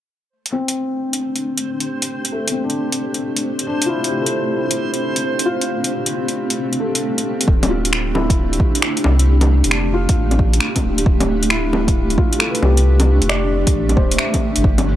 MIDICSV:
0, 0, Header, 1, 6, 480
1, 0, Start_track
1, 0, Key_signature, -1, "minor"
1, 0, Tempo, 447761
1, 333, Time_signature, 4, 2, 24, 8
1, 16038, End_track
2, 0, Start_track
2, 0, Title_t, "Synth texture"
2, 0, Program_c, 0, 99
2, 321, Note_on_c, 0, 72, 80
2, 8020, Note_off_c, 0, 72, 0
2, 15710, Note_on_c, 0, 77, 84
2, 16038, Note_off_c, 0, 77, 0
2, 16038, End_track
3, 0, Start_track
3, 0, Title_t, "Felt piano"
3, 0, Program_c, 1, 0
3, 503, Control_c, 1, 64, 127
3, 562, Note_on_c, 1, 60, 65
3, 1920, Note_off_c, 1, 60, 0
3, 2489, Note_on_c, 1, 57, 50
3, 2697, Note_on_c, 1, 60, 52
3, 2829, Note_on_c, 1, 62, 50
3, 3843, Note_off_c, 1, 57, 0
3, 3916, Note_off_c, 1, 62, 0
3, 3932, Note_on_c, 1, 62, 70
3, 3983, Note_off_c, 1, 60, 0
3, 4138, Note_on_c, 1, 65, 54
3, 4169, Note_on_c, 1, 64, 70
3, 4379, Note_on_c, 1, 67, 49
3, 4516, Note_on_c, 1, 69, 48
3, 5285, Note_off_c, 1, 62, 0
3, 5424, Note_off_c, 1, 65, 0
3, 5524, Note_off_c, 1, 64, 0
3, 5665, Note_off_c, 1, 67, 0
3, 5817, Note_off_c, 1, 69, 0
3, 5848, Note_on_c, 1, 65, 73
3, 7203, Note_off_c, 1, 65, 0
3, 7287, Note_on_c, 1, 69, 50
3, 8028, Control_c, 1, 64, 0
3, 8190, Control_c, 1, 64, 127
3, 8207, Note_off_c, 1, 69, 0
3, 8247, Note_on_c, 1, 65, 57
3, 8730, Note_on_c, 1, 64, 70
3, 9603, Note_off_c, 1, 65, 0
3, 10084, Note_off_c, 1, 64, 0
3, 10415, Note_on_c, 1, 62, 61
3, 10651, Note_on_c, 1, 65, 71
3, 11766, Note_off_c, 1, 62, 0
3, 12004, Note_off_c, 1, 65, 0
3, 12329, Note_on_c, 1, 64, 71
3, 13055, Note_on_c, 1, 65, 67
3, 13271, Note_on_c, 1, 69, 51
3, 13412, Note_on_c, 1, 71, 50
3, 13537, Note_on_c, 1, 67, 72
3, 13684, Note_off_c, 1, 64, 0
3, 14249, Note_on_c, 1, 74, 72
3, 14407, Note_off_c, 1, 65, 0
3, 14551, Note_off_c, 1, 69, 0
3, 14705, Note_off_c, 1, 71, 0
3, 14887, Note_off_c, 1, 67, 0
3, 14970, Note_on_c, 1, 72, 79
3, 15181, Note_on_c, 1, 76, 49
3, 15604, Note_off_c, 1, 74, 0
3, 15710, Control_c, 1, 64, 0
3, 15889, Note_off_c, 1, 72, 0
3, 15908, Control_c, 1, 64, 127
3, 16038, Note_off_c, 1, 76, 0
3, 16038, End_track
4, 0, Start_track
4, 0, Title_t, "Ambient pad"
4, 0, Program_c, 2, 92
4, 330, Note_on_c, 2, 57, 68
4, 467, Note_on_c, 2, 62, 73
4, 1247, Note_on_c, 2, 67, 71
4, 1499, Note_on_c, 2, 60, 72
4, 15690, Note_off_c, 2, 60, 0
4, 16038, Note_off_c, 2, 57, 0
4, 16038, Note_off_c, 2, 62, 0
4, 16038, Note_off_c, 2, 67, 0
4, 16038, End_track
5, 0, Start_track
5, 0, Title_t, "Sub bass"
5, 0, Program_c, 3, 38
5, 8015, Note_on_c, 3, 26, 96
5, 9204, Note_off_c, 3, 26, 0
5, 9703, Note_on_c, 3, 36, 89
5, 10317, Note_off_c, 3, 36, 0
5, 10338, Note_on_c, 3, 29, 82
5, 10795, Note_off_c, 3, 29, 0
5, 10897, Note_on_c, 3, 33, 97
5, 11365, Note_off_c, 3, 33, 0
5, 11616, Note_on_c, 3, 26, 90
5, 11842, Note_off_c, 3, 26, 0
5, 11859, Note_on_c, 3, 26, 98
5, 13046, Note_off_c, 3, 26, 0
5, 13534, Note_on_c, 3, 36, 89
5, 14153, Note_off_c, 3, 36, 0
5, 14174, Note_on_c, 3, 29, 79
5, 14633, Note_off_c, 3, 29, 0
5, 14736, Note_on_c, 3, 33, 100
5, 14970, Note_off_c, 3, 33, 0
5, 14977, Note_on_c, 3, 26, 82
5, 15202, Note_off_c, 3, 26, 0
5, 15620, Note_on_c, 3, 31, 80
5, 15691, Note_off_c, 3, 31, 0
5, 15696, Note_on_c, 3, 31, 97
5, 16038, Note_off_c, 3, 31, 0
5, 16038, End_track
6, 0, Start_track
6, 0, Title_t, "Drums"
6, 490, Note_on_c, 9, 42, 40
6, 598, Note_off_c, 9, 42, 0
6, 733, Note_on_c, 9, 42, 49
6, 840, Note_off_c, 9, 42, 0
6, 1214, Note_on_c, 9, 42, 51
6, 1321, Note_off_c, 9, 42, 0
6, 1453, Note_on_c, 9, 42, 28
6, 1560, Note_off_c, 9, 42, 0
6, 1689, Note_on_c, 9, 42, 51
6, 1796, Note_off_c, 9, 42, 0
6, 1934, Note_on_c, 9, 42, 41
6, 2041, Note_off_c, 9, 42, 0
6, 2167, Note_on_c, 9, 42, 52
6, 2274, Note_off_c, 9, 42, 0
6, 2410, Note_on_c, 9, 42, 41
6, 2517, Note_off_c, 9, 42, 0
6, 2654, Note_on_c, 9, 42, 52
6, 2761, Note_off_c, 9, 42, 0
6, 2892, Note_on_c, 9, 42, 29
6, 2999, Note_off_c, 9, 42, 0
6, 3135, Note_on_c, 9, 42, 52
6, 3242, Note_off_c, 9, 42, 0
6, 3370, Note_on_c, 9, 42, 30
6, 3477, Note_off_c, 9, 42, 0
6, 3607, Note_on_c, 9, 42, 52
6, 3714, Note_off_c, 9, 42, 0
6, 3849, Note_on_c, 9, 42, 43
6, 3957, Note_off_c, 9, 42, 0
6, 4091, Note_on_c, 9, 42, 54
6, 4198, Note_off_c, 9, 42, 0
6, 4333, Note_on_c, 9, 42, 43
6, 4440, Note_off_c, 9, 42, 0
6, 4571, Note_on_c, 9, 42, 50
6, 4679, Note_off_c, 9, 42, 0
6, 5046, Note_on_c, 9, 42, 54
6, 5153, Note_off_c, 9, 42, 0
6, 5292, Note_on_c, 9, 42, 28
6, 5399, Note_off_c, 9, 42, 0
6, 5533, Note_on_c, 9, 42, 52
6, 5640, Note_off_c, 9, 42, 0
6, 5781, Note_on_c, 9, 42, 44
6, 5888, Note_off_c, 9, 42, 0
6, 6019, Note_on_c, 9, 42, 50
6, 6126, Note_off_c, 9, 42, 0
6, 6263, Note_on_c, 9, 42, 41
6, 6371, Note_off_c, 9, 42, 0
6, 6499, Note_on_c, 9, 42, 53
6, 6606, Note_off_c, 9, 42, 0
6, 6737, Note_on_c, 9, 42, 29
6, 6844, Note_off_c, 9, 42, 0
6, 6970, Note_on_c, 9, 42, 54
6, 7078, Note_off_c, 9, 42, 0
6, 7211, Note_on_c, 9, 42, 29
6, 7318, Note_off_c, 9, 42, 0
6, 7451, Note_on_c, 9, 42, 52
6, 7559, Note_off_c, 9, 42, 0
6, 7697, Note_on_c, 9, 42, 42
6, 7804, Note_off_c, 9, 42, 0
6, 7940, Note_on_c, 9, 42, 51
6, 8015, Note_on_c, 9, 36, 112
6, 8047, Note_off_c, 9, 42, 0
6, 8122, Note_off_c, 9, 36, 0
6, 8178, Note_on_c, 9, 42, 43
6, 8178, Note_on_c, 9, 61, 61
6, 8285, Note_off_c, 9, 42, 0
6, 8285, Note_off_c, 9, 61, 0
6, 8415, Note_on_c, 9, 42, 54
6, 8498, Note_on_c, 9, 26, 102
6, 8522, Note_off_c, 9, 42, 0
6, 8605, Note_off_c, 9, 26, 0
6, 8738, Note_on_c, 9, 61, 62
6, 8845, Note_off_c, 9, 61, 0
6, 8896, Note_on_c, 9, 36, 96
6, 8899, Note_on_c, 9, 42, 55
6, 9003, Note_off_c, 9, 36, 0
6, 9006, Note_off_c, 9, 42, 0
6, 9144, Note_on_c, 9, 42, 30
6, 9217, Note_on_c, 9, 36, 99
6, 9251, Note_off_c, 9, 42, 0
6, 9324, Note_off_c, 9, 36, 0
6, 9381, Note_on_c, 9, 42, 54
6, 9459, Note_on_c, 9, 26, 104
6, 9488, Note_off_c, 9, 42, 0
6, 9566, Note_off_c, 9, 26, 0
6, 9615, Note_on_c, 9, 42, 45
6, 9693, Note_on_c, 9, 61, 66
6, 9722, Note_off_c, 9, 42, 0
6, 9800, Note_off_c, 9, 61, 0
6, 9856, Note_on_c, 9, 42, 54
6, 9964, Note_off_c, 9, 42, 0
6, 10089, Note_on_c, 9, 42, 44
6, 10089, Note_on_c, 9, 61, 62
6, 10197, Note_off_c, 9, 42, 0
6, 10197, Note_off_c, 9, 61, 0
6, 10335, Note_on_c, 9, 42, 55
6, 10411, Note_on_c, 9, 26, 105
6, 10442, Note_off_c, 9, 42, 0
6, 10518, Note_off_c, 9, 26, 0
6, 10815, Note_on_c, 9, 42, 56
6, 10818, Note_on_c, 9, 36, 102
6, 10922, Note_off_c, 9, 42, 0
6, 10925, Note_off_c, 9, 36, 0
6, 11055, Note_on_c, 9, 42, 29
6, 11055, Note_on_c, 9, 61, 35
6, 11138, Note_on_c, 9, 36, 94
6, 11162, Note_off_c, 9, 42, 0
6, 11162, Note_off_c, 9, 61, 0
6, 11245, Note_off_c, 9, 36, 0
6, 11293, Note_on_c, 9, 42, 56
6, 11368, Note_on_c, 9, 26, 102
6, 11400, Note_off_c, 9, 42, 0
6, 11475, Note_off_c, 9, 26, 0
6, 11532, Note_on_c, 9, 42, 45
6, 11532, Note_on_c, 9, 61, 36
6, 11538, Note_on_c, 9, 36, 57
6, 11639, Note_off_c, 9, 42, 0
6, 11639, Note_off_c, 9, 61, 0
6, 11645, Note_off_c, 9, 36, 0
6, 11771, Note_on_c, 9, 42, 55
6, 11857, Note_on_c, 9, 36, 120
6, 11878, Note_off_c, 9, 42, 0
6, 11965, Note_off_c, 9, 36, 0
6, 12012, Note_on_c, 9, 42, 43
6, 12012, Note_on_c, 9, 61, 61
6, 12119, Note_off_c, 9, 42, 0
6, 12119, Note_off_c, 9, 61, 0
6, 12249, Note_on_c, 9, 42, 54
6, 12331, Note_on_c, 9, 26, 109
6, 12357, Note_off_c, 9, 42, 0
6, 12438, Note_off_c, 9, 26, 0
6, 12576, Note_on_c, 9, 61, 55
6, 12683, Note_off_c, 9, 61, 0
6, 12734, Note_on_c, 9, 36, 101
6, 12736, Note_on_c, 9, 42, 54
6, 12841, Note_off_c, 9, 36, 0
6, 12843, Note_off_c, 9, 42, 0
6, 12974, Note_on_c, 9, 42, 30
6, 13055, Note_on_c, 9, 36, 99
6, 13081, Note_off_c, 9, 42, 0
6, 13162, Note_off_c, 9, 36, 0
6, 13214, Note_on_c, 9, 42, 56
6, 13293, Note_on_c, 9, 26, 104
6, 13321, Note_off_c, 9, 42, 0
6, 13401, Note_off_c, 9, 26, 0
6, 13451, Note_on_c, 9, 42, 44
6, 13535, Note_on_c, 9, 61, 61
6, 13558, Note_off_c, 9, 42, 0
6, 13642, Note_off_c, 9, 61, 0
6, 13693, Note_on_c, 9, 42, 53
6, 13801, Note_off_c, 9, 42, 0
6, 13933, Note_on_c, 9, 42, 41
6, 13933, Note_on_c, 9, 61, 58
6, 14040, Note_off_c, 9, 42, 0
6, 14040, Note_off_c, 9, 61, 0
6, 14169, Note_on_c, 9, 42, 54
6, 14252, Note_on_c, 9, 26, 105
6, 14276, Note_off_c, 9, 42, 0
6, 14359, Note_off_c, 9, 26, 0
6, 14653, Note_on_c, 9, 42, 55
6, 14654, Note_on_c, 9, 36, 106
6, 14760, Note_off_c, 9, 42, 0
6, 14761, Note_off_c, 9, 36, 0
6, 14894, Note_on_c, 9, 42, 29
6, 14894, Note_on_c, 9, 61, 32
6, 14975, Note_on_c, 9, 36, 97
6, 15001, Note_off_c, 9, 42, 0
6, 15001, Note_off_c, 9, 61, 0
6, 15082, Note_off_c, 9, 36, 0
6, 15131, Note_on_c, 9, 42, 52
6, 15206, Note_on_c, 9, 26, 103
6, 15238, Note_off_c, 9, 42, 0
6, 15314, Note_off_c, 9, 26, 0
6, 15371, Note_on_c, 9, 42, 42
6, 15371, Note_on_c, 9, 61, 35
6, 15375, Note_on_c, 9, 36, 59
6, 15478, Note_off_c, 9, 42, 0
6, 15478, Note_off_c, 9, 61, 0
6, 15483, Note_off_c, 9, 36, 0
6, 15605, Note_on_c, 9, 42, 51
6, 15695, Note_on_c, 9, 36, 113
6, 15712, Note_off_c, 9, 42, 0
6, 15803, Note_off_c, 9, 36, 0
6, 15846, Note_on_c, 9, 42, 39
6, 15846, Note_on_c, 9, 61, 59
6, 15954, Note_off_c, 9, 42, 0
6, 15954, Note_off_c, 9, 61, 0
6, 16038, End_track
0, 0, End_of_file